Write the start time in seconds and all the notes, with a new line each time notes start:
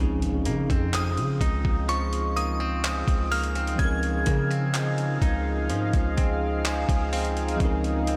Already playing: F3 C4 G#4 D#5
0.00 C#2 C#3 C#4 D#4 G#4 F5, impact
0.22 closed hi-hat
0.45 C#3 A#3, closed hi-hat
0.70 F2 C4, kick, closed hi-hat
0.93 F3 D#6, clap, closed hi-hat
1.17 C#3, closed hi-hat
1.41 C#2 D#4, kick, closed hi-hat
1.65 kick
1.89 F3 C#6, closed hi-hat
2.13 closed hi-hat
2.36 A#3 D#6, closed hi-hat
2.60 C4
2.84 F3, clap, closed hi-hat
3.08 C#2, kick, closed hi-hat
3.31 A#3 F6, closed hi-hat, open hi-hat
3.43 closed hi-hat
3.55 C4, closed hi-hat
3.67 closed hi-hat
3.75 C#2 C#3 F3 C4 G#6, kick, closed hi-hat
3.80 C#4 D#4
3.84 A#4
4.03 closed hi-hat
4.26 C#3 A#3, kick, closed hi-hat
4.50 C4, closed hi-hat
4.74 F3, clap, closed hi-hat
4.98 closed hi-hat
5.22 C#2 D#4, kick, closed hi-hat
5.69 G#2 F3, closed hi-hat
5.93 C#2, kick, closed hi-hat
6.17 C4, kick, closed hi-hat
6.65 F3 G#5, clap, closed hi-hat
6.89 C#2, kick, closed hi-hat
7.13 C4 F5, closed hi-hat, open hi-hat
7.25 closed hi-hat
7.37 closed hi-hat
7.48 closed hi-hat
7.56 C#3 F3 C4
7.60 C#2 C#4 D#4, kick, closed hi-hat
7.65 A#4
7.84 closed hi-hat
8.07 C4, closed hi-hat